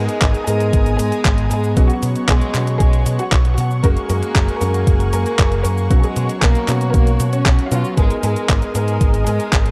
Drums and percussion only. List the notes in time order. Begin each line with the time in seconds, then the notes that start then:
0.09 closed hi-hat, cabasa
0.22 kick, clap, closed hi-hat, cabasa
0.34 closed hi-hat, cabasa
0.47 open hi-hat, cabasa
0.60 closed hi-hat, cabasa
0.73 kick, closed hi-hat, cabasa
0.86 closed hi-hat, cabasa
0.99 open hi-hat, cabasa
1.12 closed hi-hat, cabasa
1.25 kick, clap, closed hi-hat, cabasa
1.38 closed hi-hat
1.51 open hi-hat, cabasa
1.64 cabasa
1.77 kick, closed hi-hat, cabasa
1.90 closed hi-hat, cabasa
2.03 open hi-hat, cabasa
2.16 closed hi-hat, cabasa
2.28 kick, clap, closed hi-hat, cabasa
2.41 closed hi-hat, cabasa
2.54 clap, open hi-hat, cabasa
2.67 closed hi-hat, cabasa
2.80 kick, closed hi-hat, cabasa
2.93 closed hi-hat, cabasa
3.06 open hi-hat, cabasa
3.19 closed hi-hat, cabasa
3.32 kick, clap, closed hi-hat, cabasa
3.45 closed hi-hat
3.58 open hi-hat, cabasa
3.71 cabasa
3.84 kick, closed hi-hat, cabasa
3.97 closed hi-hat, cabasa
4.10 open hi-hat, cabasa
4.23 closed hi-hat, cabasa
4.35 kick, clap, closed hi-hat, cabasa
4.48 closed hi-hat, cabasa
4.61 open hi-hat, cabasa
4.74 closed hi-hat, cabasa
4.87 kick, closed hi-hat, cabasa
5.00 closed hi-hat, cabasa
5.13 open hi-hat, cabasa
5.26 closed hi-hat, cabasa
5.39 kick, clap, closed hi-hat, cabasa
5.52 closed hi-hat
5.65 open hi-hat, cabasa
5.78 cabasa
5.91 kick, closed hi-hat, cabasa
6.04 closed hi-hat, cabasa
6.16 open hi-hat, cabasa
6.29 closed hi-hat, cabasa
6.42 kick, clap, closed hi-hat, cabasa
6.55 closed hi-hat, cabasa
6.68 clap, open hi-hat, cabasa
6.81 closed hi-hat, cabasa
6.94 kick, closed hi-hat, cabasa
7.07 closed hi-hat, cabasa
7.20 open hi-hat, cabasa
7.33 closed hi-hat, cabasa
7.46 kick, clap, closed hi-hat, cabasa
7.59 closed hi-hat
7.72 open hi-hat, cabasa
7.85 cabasa
7.97 kick, closed hi-hat, cabasa
8.10 closed hi-hat, cabasa
8.23 open hi-hat, cabasa
8.36 closed hi-hat, cabasa
8.49 kick, clap, closed hi-hat, cabasa
8.62 closed hi-hat, cabasa
8.75 open hi-hat, cabasa
8.88 closed hi-hat, cabasa
9.01 kick, closed hi-hat, cabasa
9.14 closed hi-hat, cabasa
9.27 open hi-hat, cabasa
9.40 closed hi-hat, cabasa
9.53 kick, clap, closed hi-hat, cabasa
9.66 closed hi-hat